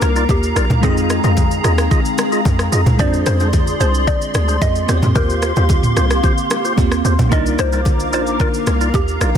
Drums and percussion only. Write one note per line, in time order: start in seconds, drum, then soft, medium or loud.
0.02 cross-stick loud
0.02 high bongo soft
0.02 low bongo medium
0.02 shaker medium
0.16 shaker medium
0.29 kick medium
0.29 high bongo medium
0.29 shaker medium
0.43 shaker medium
0.56 cross-stick medium
0.56 shaker medium
0.70 mid tom medium
0.70 low bongo medium
0.70 shaker soft
0.83 kick loud
0.83 low conga medium
0.83 shaker medium
0.97 shaker medium
1.10 cross-stick medium
1.10 shaker medium
1.24 low bongo medium
1.24 shaker soft
1.37 kick medium
1.37 high bongo medium
1.37 low conga medium
1.37 shaker medium
1.51 shaker medium
1.64 cross-stick medium
1.64 shaker medium
1.78 cross-stick loud
1.78 shaker medium
1.91 kick loud
1.91 low conga medium
1.91 shaker medium
2.05 shaker medium
2.18 cross-stick loud
2.18 high bongo soft
2.18 low bongo medium
2.18 shaker loud
2.32 shaker medium
2.45 kick medium
2.45 high bongo medium
2.45 shaker medium
2.59 cross-stick medium
2.59 shaker medium
2.72 shaker loud
2.86 mid tom medium
2.86 low bongo medium
2.86 shaker soft
2.99 kick loud
2.99 low conga medium
2.99 shaker medium
3.13 shaker medium
3.26 cross-stick medium
3.26 shaker medium
3.40 low bongo medium
3.40 shaker soft
3.53 kick medium
3.53 high bongo medium
3.53 low conga medium
3.53 shaker medium
3.67 shaker medium
3.80 shaker medium
3.94 shaker medium
4.07 kick loud
4.07 low conga medium
4.07 shaker medium
4.22 shaker medium
4.34 cross-stick loud
4.34 high bongo soft
4.34 low bongo medium
4.34 shaker loud
4.48 shaker medium
4.62 kick medium
4.62 high bongo medium
4.62 shaker medium
4.75 shaker medium
4.89 cross-stick medium
4.89 shaker loud
5.02 mid tom medium
5.02 low bongo medium
5.02 shaker soft
5.15 kick loud
5.15 low conga medium
5.15 shaker medium
5.30 shaker medium
5.42 cross-stick medium
5.42 shaker medium
5.56 low bongo medium
5.56 shaker soft
5.69 kick loud
5.69 high bongo medium
5.69 low conga medium
5.69 shaker medium
5.83 mid tom medium
5.83 shaker medium
5.97 cross-stick medium
5.97 shaker medium
6.10 cross-stick medium
6.10 shaker medium
6.23 kick loud
6.23 low conga medium
6.23 shaker medium
6.38 shaker medium
6.50 cross-stick loud
6.50 high bongo soft
6.50 low bongo medium
6.50 shaker medium
6.65 shaker medium
6.78 kick medium
6.78 high bongo medium
6.78 shaker medium
6.92 cross-stick medium
6.92 shaker medium
7.05 shaker medium
7.19 mid tom medium
7.19 low bongo medium
7.19 shaker soft
7.32 kick loud
7.32 low conga medium
7.32 shaker medium
7.46 shaker medium
7.59 cross-stick medium
7.59 shaker loud
7.72 low bongo medium
7.72 shaker soft
7.85 kick medium
7.85 high bongo medium
7.85 low conga medium
7.85 shaker medium
8.00 shaker medium
8.13 shaker medium
8.27 shaker medium
8.40 kick loud
8.40 low conga medium
8.40 shaker medium
8.54 shaker medium
8.67 cross-stick medium
8.67 high bongo soft
8.67 low bongo medium
8.67 shaker medium
8.81 shaker medium
8.94 kick medium
8.94 high bongo medium
8.94 shaker medium
9.08 shaker soft
9.21 cross-stick loud
9.21 shaker medium